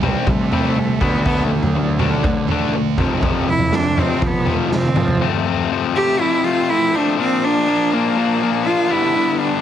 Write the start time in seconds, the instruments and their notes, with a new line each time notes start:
Already playing: picked electric bass C2
0.03 overdriven electric guitar C3 G3 C4, floor tom, mid tom
0.27 picked electric bass C3, overdriven electric guitar C3 G3, cello A3, kick, floor tom
0.52 overdriven electric guitar C3 G3 C4, floor tom
0.78 overdriven electric guitar C3 G3
1.01 picked electric bass D2, overdriven electric guitar D3 A3 D4, cello B3, kick, floor tom, mid tom
1.25 picked electric bass D2, overdriven electric guitar D3 A3 D4, cello B3, kick, floor tom
1.39 floor tom
1.44 cello A3
1.52 overdriven electric guitar D3 A3
1.61 cello F#3, floor tom
1.76 overdriven electric guitar D3 A3
1.99 overdriven electric guitar D3 A3 D4, floor tom, mid tom
2.23 picked electric bass D3, overdriven electric guitar D3 A3, kick, floor tom
2.47 distorted electric guitar D3, floor tom
2.51 overdriven electric guitar D3 A3 D4
2.75 overdriven electric guitar D3 A3
2.98 picked electric bass F2, overdriven electric guitar F2 C3 F3, kick, floor tom, mid tom
3.21 picked electric bass F2, overdriven electric guitar F2 C3 F3, kick, floor tom
3.48 overdriven electric guitar F2 C3, cello E4
3.59 floor tom
3.72 overdriven electric guitar F2 C3, cello D4, snare
3.97 overdriven electric guitar F2 C3 F3, cello C4, floor tom
4.22 overdriven electric guitar F2 C3, picked electric bass F3, kick, floor tom, mid tom
4.27 cello B3
4.45 overdriven electric guitar F2 C3 F3, floor tom
4.52 cello A3
4.70 overdriven electric guitar F2 C3, snare
4.75 cello C4
4.83 high tom
4.96 overdriven electric guitar F2 C3, picked electric bass F3, mid tom
5.08 floor tom
5.21 overdriven electric guitar F2 C3 F3 A3 C4
5.71 overdriven electric guitar C3 F3 A3 C4
5.95 overdriven electric guitar F3 A3 C4, cello G4
6.20 overdriven electric guitar F2 C3 F3 A3 C4, cello E4
6.44 overdriven electric guitar F3 A3 C4, cello F4
6.70 cello E4
6.94 overdriven electric guitar F3 A3 C4, cello D4
7.18 overdriven electric guitar A#2 F3 A#3 D4, cello C4
7.44 cello D4
7.67 overdriven electric guitar A#2 F3 A#3 D4
7.92 overdriven electric guitar F3 A#3 D4, cello A#3
8.16 overdriven electric guitar A#2 F3 A#3 D4
8.42 overdriven electric guitar F3 A#3 D4
8.66 cello F4
8.89 overdriven electric guitar G2 D3 G3 B3 D4, cello E4
9.14 overdriven electric guitar G2 D3 G3 B3 D4
9.39 cello D4